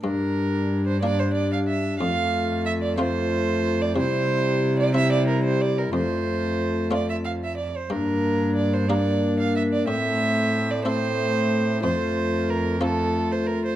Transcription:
0.02 1.97 G2 medium
0.02 0.98 G3 medium
0.02 0.97 D4 medium
0.02 0.82 A#4 medium
0.87 1.01 C5 medium
1.02 1.98 G3 medium
1.02 1.73 A#3 soft
1.02 1.74 D4 soft
1.02 1.07 E4 medium
1.02 1.21 D5 medium
1.06 2.02 D4 medium
1.19 1.34 C5 medium
1.34 1.51 D5 medium
1.52 1.59 F5 medium
1.68 1.99 E5 medium
1.99 3.92 F2 soft
1.99 3.99 F2 medium
1.99 2.97 A3 medium
1.99 2.97 F4 medium
1.99 2.64 F5 medium
2.66 2.72 E5 medium
2.83 2.98 D5 medium
2.98 3.68 A3 medium
2.98 3.97 A3 medium
2.98 3.69 C4 medium
2.98 3.69 F4 medium
2.98 3.93 F4 medium
2.98 3.02 G4 medium
2.98 3.83 C5 medium
3.82 3.96 D5 medium
3.94 5.88 C3 medium
3.94 5.92 C3 medium
3.94 4.94 G3 medium
3.94 4.91 E4 medium
3.94 4.76 C5 loud
4.79 4.95 D5 medium
4.94 5.93 G3 medium
4.94 5.65 C4 medium
4.94 5.65 E4 medium
4.94 5.94 E4 medium
4.94 5.11 E5 loud
5.13 5.27 D5 medium
5.28 5.43 A#4 medium
5.44 5.63 C5 medium
5.61 5.80 D5 medium
5.78 5.94 A#4 medium
5.91 7.67 F2 medium
5.91 7.58 A3 medium
5.91 7.58 F4 medium
5.91 6.91 C5 medium
6.91 7.62 A3 soft
6.91 7.63 C4 soft
6.91 7.63 F4 soft
6.91 7.09 D5 medium
7.10 7.16 E5 medium
7.25 7.31 F5 medium
7.44 7.57 E5 medium
7.57 7.78 D5 medium
7.76 7.93 C5 medium
7.90 9.83 G2 soft
7.90 9.84 G2 medium
7.90 8.85 A#3 medium
7.90 8.85 D4 medium
7.90 8.55 A#4 medium
8.56 8.75 D5 medium
8.74 8.90 C5 medium
8.87 9.89 A#3 medium
8.87 9.60 A#3 soft
8.87 9.87 D4 medium
8.87 9.60 G4 soft
8.87 9.60 A#4 medium
8.87 9.38 D5 medium
9.40 9.55 F5 medium
9.56 9.63 E5 medium
9.74 9.88 D5 medium
9.86 11.79 A2 medium
9.86 11.85 A2 medium
9.86 10.85 A3 medium
9.86 10.83 C4 medium
9.86 10.72 E5 medium
10.71 10.85 D5 medium
10.84 11.81 A3 medium
10.84 11.82 C4 medium
10.84 11.56 C4 medium
10.84 11.56 E4 medium
10.84 11.56 A4 medium
10.84 11.81 C5 loud
11.81 13.76 F2 medium
11.81 12.79 A3 medium
11.81 12.79 F4 medium
11.81 12.51 C5 medium
12.50 12.82 A#4 medium
12.79 13.76 A3 medium
12.79 13.52 C4 medium
12.79 13.76 F4 medium
12.79 13.52 F4 medium
12.79 13.53 A4 medium
12.84 13.33 A4 medium
13.32 13.48 C5 medium
13.47 13.63 A#4 medium
13.65 13.76 C5 medium

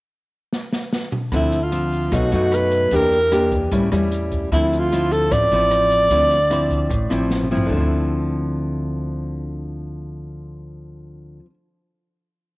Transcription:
0.53 snare soft
0.73 snare medium
0.93 snare medium
1.12 mid tom medium
1.32 2.08 D2 medium
1.32 2.11 D3 medium
1.32 1.59 F3 soft
1.32 1.59 C4 soft
1.32 1.59 E4 medium
1.32 1.65 E4 medium
1.32 kick medium
1.32 cross-stick medium
1.32 closed hi-hat soft
1.52 closed hi-hat soft
1.63 2.18 F4 medium
1.72 2.11 F3 medium
1.72 2.11 C4 medium
1.72 closed hi-hat soft
1.92 closed hi-hat soft
2.12 2.31 B1 medium
2.12 2.90 B2 soft
2.12 2.29 F#3 soft
2.12 2.29 A3 soft
2.12 2.29 D#4 medium
2.12 kick medium
2.12 cross-stick soft
2.12 closed hi-hat soft
2.16 2.56 F#4 medium
2.32 2.89 F#2 medium
2.32 2.89 F#3 medium
2.32 2.89 A3 medium
2.32 2.90 D#4 medium
2.32 closed hi-hat soft
2.52 2.97 B4 loud
2.52 cross-stick medium
2.52 closed hi-hat soft
2.71 closed hi-hat soft
2.91 3.68 E2 medium
2.91 3.70 E3 soft
2.91 3.18 A#3 soft
2.91 3.18 D4 medium
2.91 3.19 G4 medium
2.91 kick medium
2.91 closed hi-hat soft
2.95 3.54 A#4 medium
3.12 closed hi-hat soft
3.31 3.70 A#3 medium
3.31 3.70 D4 medium
3.31 3.71 G4 medium
3.31 cross-stick medium
3.31 closed hi-hat soft
3.52 kick medium
3.52 closed hi-hat soft
3.71 3.91 A1 medium
3.71 4.50 A2 medium
3.71 3.89 G3 medium
3.71 3.89 C#4 medium
3.71 3.89 E4 medium
3.71 kick soft
3.71 closed hi-hat soft
3.91 4.48 E2 medium
3.91 4.48 G3 medium
3.91 4.49 C#4 medium
3.91 4.49 E4 medium
3.91 cross-stick medium
3.91 closed hi-hat soft
4.12 closed hi-hat soft
4.32 kick soft
4.32 closed hi-hat soft
4.52 5.28 D2 loud
4.52 5.30 D3 soft
4.52 4.89 F3 soft
4.52 4.90 C4 soft
4.52 4.80 E4 medium
4.52 4.90 E4 medium
4.52 kick soft
4.52 cross-stick soft
4.52 closed hi-hat soft
4.73 closed hi-hat soft
4.79 5.13 F4 medium
4.92 5.49 F3 medium
4.92 5.49 C4 medium
4.92 5.49 E4 medium
4.92 closed hi-hat soft
5.12 5.34 A4 medium
5.12 closed hi-hat soft
5.31 5.50 A1 loud
5.31 6.10 A2 medium
5.31 7.31 D5 loud
5.31 kick medium
5.31 cross-stick medium
5.31 closed hi-hat soft
5.51 6.07 A1 medium
5.51 6.09 F3 medium
5.51 6.09 C4 medium
5.51 6.09 E4 medium
5.51 closed hi-hat soft
5.71 cross-stick soft
5.71 closed hi-hat soft
5.91 closed hi-hat soft
6.11 6.87 D2 loud
6.11 6.89 D3 medium
6.11 6.37 F3 soft
6.11 6.37 C4 medium
6.11 6.37 E4 medium
6.11 kick soft
6.11 closed hi-hat soft
6.31 closed hi-hat soft
6.50 6.90 F3 medium
6.50 6.91 C4 medium
6.50 6.91 E4 medium
6.50 cross-stick medium
6.50 closed hi-hat soft
6.70 kick medium
6.70 closed hi-hat soft
6.89 7.09 A1 medium
6.89 7.68 A2 medium
6.89 kick medium
6.89 closed hi-hat soft
7.10 7.67 A1 medium
7.10 7.47 F3 medium
7.10 7.47 C4 medium
7.10 7.48 E4 medium
7.10 cross-stick medium
7.10 closed hi-hat soft
7.30 snare soft
7.43 mid tom soft
7.51 7.71 F3 medium
7.51 7.75 C4 medium
7.51 7.79 E4 medium
7.57 floor tom medium
7.66 11.39 D2 medium
7.66 11.39 D3 medium
7.66 kick medium
7.72 11.45 F3 medium
7.76 11.49 C4 medium
7.80 11.54 E4 medium

